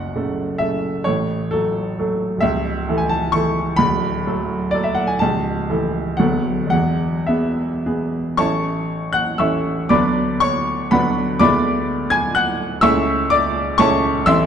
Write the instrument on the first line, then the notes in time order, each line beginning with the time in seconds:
grand piano
Already playing: F#1 F#2 F#5
0.16 C#3 A3 A4
0.58 C#3 A3 A4 E5
1.04 A1 A2 C#5
1.51 F#3 A3 A4
1.99 F#3 A3 A4
2.37 C#1 E5
2.42 C#2
2.89 E3 A3 A4
2.98 G#5
3.09 A5
3.32 E3 A3 A4 C#6
3.76 D1 D2 B5
4.27 F#3 A3 A4
4.71 F#3 A3 A4 D5
4.84 E5
4.95 F#5
5.07 G#5
5.19 C#1 C#2 A5
5.70 E3 A3 A4
6.17 D1 D2 F#3 B3 A4 F#5
6.66 E1
6.70 E2 F#5
7.26 B3 G#4 E5
7.86 B3 G#4
8.37 A1 A3 C#4 E4 C#5 A5 C#6
9.13 F#5 F#6
9.38 A1 A3 C#4 E4 E5 C#6 E6
9.89 D2 F#3 B3 D4 D5 B5 D6
10.40 C#5 C#6
10.91 D2 F#3 B3 D4 B4 F#5 B5
11.39 D2 G#3 B3 E4 D5 B5 D6
12.10 G#5 G#6
12.35 F#5 F#6
12.81 C#2 A3 C#4 E4 E5 C#6 E6
13.30 D5 D6
13.78 C#2 A3 C#4 E4 C#5 A5 C#6
14.26 A1 A3 C4 E4 E5 C6 E6